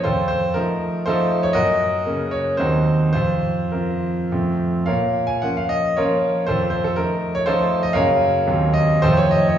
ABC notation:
X:1
M:3/4
L:1/16
Q:1/4=112
K:Fphr
V:1 name="Grand piano"
[F=Ac]2 c2 B4 [FAc]3 d | [GBe]6 d2 [EGc]4 | [Fc]4 [FB]4 z4 | [Bdf]3 a g f e2 [FBd]4 |
[F=Ac]2 c A B3 d [FAc]3 e | [Bdf]6 e2 [F=Ac] d e d |]
V:2 name="Grand piano" clef=bass
F,,4 [F,=A,E]4 [F,A,E]4 | G,,4 [D,B,D]4 [E,,G,C]4 | F,,4 [F,C]4 [F,,F,=A,C]4 | B,,4 [F,B,D]4 [F,B,D]4 |
F,,4 [F,=A,E]4 [F,A,E]4 | [G,,D,B,D]4 [E,,E,G,C]4 [F,,E,F,=A,]4 |]